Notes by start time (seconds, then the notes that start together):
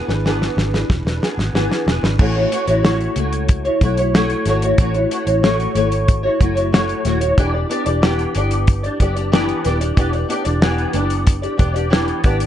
0.08 G#1 D4 G#4 B4, snare
0.25 E3 B3 D4 G#4 B4, snare
0.42 snare
0.57 G#1, snare
0.74 D4 G#4 B4, snare
0.90 E1, kick, snare
1.05 E1 D4 G#4 B4, snare
1.22 B3 D4 G#4 B4, snare
1.38 G#1, snare
1.54 G#1 E3 B3 D4 G#4 B4, snare
1.71 snare
1.86 E1 B3 D4 G#4 B4, snare
2.03 G#1 D4 G#4 B4, snare
2.19 A1 A3 E4 F#4 C#5, kick, crash
2.36 E4 F#4 C#5
2.51 A3 E4 F#4 C#5, closed hi-hat
2.67 A1 E4 F#4 C#5, closed hi-hat
2.83 A3 E4 F#4 C#5, snare
3.01 closed hi-hat
3.16 C#2 A3 E4 F#4 C#5, closed hi-hat
3.33 closed hi-hat
3.48 kick, closed hi-hat
3.65 E4 F#4 C#5, closed hi-hat
3.81 B1 A3 E4 F#4 C#5, kick, closed hi-hat
3.97 E4 F#4 C#5, closed hi-hat
4.14 A3 E4 F#4 C#5, snare
4.30 closed hi-hat
4.46 G#1 A3 E4 F#4 C#5, snare, closed hi-hat
4.62 E4 F#4 C#5, closed hi-hat
4.78 A1 A3 E4 F#4 C#5, kick, closed hi-hat
4.94 E4 F#4 C#5, closed hi-hat
5.11 A3 E4 F#4 C#5, closed hi-hat
5.27 A1 E4 F#4 C#5, closed hi-hat
5.43 A3 E4 F#4 C#5, snare
5.60 closed hi-hat
5.75 G#1 A3 E4 F#4 C#5, closed hi-hat
5.92 closed hi-hat
6.08 kick, closed hi-hat
6.23 E4 F#4 C#5
6.39 F#1 A3 E4 F#4 C#5, kick, closed hi-hat
6.55 E4 F#4 C#5, closed hi-hat
6.72 A3 E4 F#4 C#5, snare
6.89 closed hi-hat
7.05 D#1 A3 E4 F#4 C#5, snare, closed hi-hat
7.21 E4 F#4 C#5, closed hi-hat
7.37 E1 E3 B3 D4 G4 D5, kick, closed hi-hat
7.54 D4 G4 D5
7.69 B3 D4 G4 D5, closed hi-hat
7.86 E1 D4 G4 D5, closed hi-hat
8.02 E3 B3 D4 G4 D5, snare
8.19 closed hi-hat
8.35 G1 B3 D4 G4 D5, closed hi-hat
8.51 closed hi-hat
8.67 kick, closed hi-hat
8.83 D4 G4 D5, closed hi-hat
9.00 F#1 B3 D4 G4 D5, kick, closed hi-hat
9.16 D4 G4 D5, closed hi-hat
9.32 E3 B3 D4 G4 D5, snare
9.49 closed hi-hat
9.65 D#1 B3 D4 G4 D5, snare, closed hi-hat
9.81 D4 G4 D5, closed hi-hat
9.97 E1 E3 B3 D4 G4 D5, kick, closed hi-hat
10.12 D4 G4 D5, closed hi-hat
10.28 B3 D4 G4 D5, closed hi-hat
10.44 E1 D4 G4 D5, closed hi-hat
10.61 E3 B3 D4 G4 D5, snare
10.78 closed hi-hat
10.93 F#1 B3 D4 G4 D5, closed hi-hat
11.10 closed hi-hat
11.27 kick, closed hi-hat
11.42 D4 G4 D5, closed hi-hat
11.57 E1 B3 D4 G4 D5, kick, closed hi-hat
11.74 D4 G4 D5, closed hi-hat
11.90 E3 B3 D4 G4 D5, snare
12.08 closed hi-hat
12.23 G#1 B3 D4 G4 D5, kick, closed hi-hat
12.40 closed hi-hat